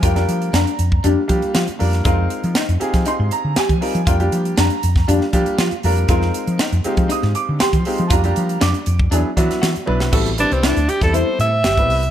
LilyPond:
<<
  \new Staff \with { instrumentName = "Alto saxophone" } { \time 4/4 \key g \phrygian \tempo 4 = 119 r1 | r1 | r1 | r1 |
r1 | \key a \minor r8 d'16 c'16 d'8 g'16 a'16 c''8 e''4. | }
  \new Staff \with { instrumentName = "Clean electric guitar" } { \time 4/4 \key g \phrygian f'8 r8 d'8 r8 d'8 r8 f'8 r8 | f'8 r8 ees'8 r8 ees'8 r8 g'8 r8 | f'8 r8 d'8 r8 d'8 r8 f'8 r8 | f'8 r8 ees'8 r8 ees'8 r8 g'8 r8 |
f'8 r8 d'8 r8 d'8 r8 ges'8 r8 | \key a \minor fis'8 r8 e'8 r8 e'8 r8 g'8 r8 | }
  \new Staff \with { instrumentName = "Grand piano" } { \time 4/4 \key g \phrygian << { g''4 bes''4 r2 | r2 c'''8 bes''8 aes''4 | g''4 bes''4 r4 f''8 bes''8 | r2 ees'''8 d'''8 c'''4 |
<a'' bes''>4 d'''4 r2 | \key a \minor r1 | } \\ { <g bes d' f' bes'>16 <g bes d' f' bes'>4 r8. <g bes d' f' g'>16 r16 <g bes d' f' g'>8 r8 <g bes d' f' bes'>8 | <aes c' ees' f' bes'>4~ <aes c' ees' f' bes'>16 r16 <c' ees' f' g' aes'>4. r8 <g c' ees' f' bes'>16 r16 | <g bes d' f' bes'>16 <g bes d' f' g'>4 r8. <g bes d' f' g'>16 r16 <g bes d' f' g'>8 r8 <g bes d' f' bes'>8 | <aes c' ees' f' bes'>4~ <aes c' ees' f' bes'>16 r16 <aes c' ees' f' g'>4. r8 <aes c' ees' f' g'>16 r16 |
<g bes d' f' g'>16 <g bes d' f' g'>4 r8. <ges b d' e' gis'>16 r16 <ges b d' e' ges'>8 r8 <ges b d' e' b'>8 | <g b c' e' a'>16 r16 <g b c' e' b'>8. r8 <g b c' e' a'>4 r8 <g b c' e' b'>8 r16 | } >> }
  \new Staff \with { instrumentName = "Fretless electric bass" } { \clef bass \time 4/4 \key g \phrygian f,8 f8 f,16 r16 f,8 f,16 r16 f16 r16 f16 r16 f,8 | f,8 r16 f16 r16 f,16 r16 f16 r16 aes,16 r16 d16 r16 f16 r16 f16 | f,8 f8 f,16 r16 f,8 f,16 r16 f16 r16 f16 r16 f,8 | f,8 r16 f16 r16 f,16 r16 f16 r16 aes,16 r16 d16 r16 f16 r16 f16 |
f,8 f8 f,16 r16 f,8 e,16 r16 e16 r16 e16 r16 b,,8 | \key a \minor a,,8. c,8 d,16 r16 e,8 r16 a,8 g,,8 c,8 | }
  \new DrumStaff \with { instrumentName = "Drums" } \drummode { \time 4/4 <hh bd>16 <hh sn>16 hh16 hh16 <hh sn>16 hh16 hh16 bd16 hh8 <hh bd>16 hh16 <hh sn>16 hh16 hho16 <hh sn>16 | <hh bd>8 hh16 hh16 <hh sn>16 hh16 hh16 <hh bd sn>16 hh8 hh8 <hh sn>16 <hh bd>16 hho16 hh16 | <hh bd>16 hh16 hh16 hh16 <hh sn>16 hh16 hh16 <bd sn>16 hh16 sn16 <hh bd>16 hh16 <hh sn>16 hh16 hho16 hh16 | <hh bd>16 sn16 hh16 hh16 <hh sn>16 hh16 hh16 <hh bd>16 hh16 sn16 hh8 <hh sn>16 <hh bd>16 hho16 hh16 |
<hh bd>16 hh16 hh16 hh16 <hh sn>16 hh16 hh16 bd16 hh8 <hh bd>16 <hh sn>16 <hh sn>16 hh16 tommh16 sn16 | <cymc bd>16 hh16 hh16 hh16 <hh sn>16 hh16 hh16 <hh bd sn>16 hh8 hh8 <hh sn>16 <hh bd>16 hho16 hh16 | }
>>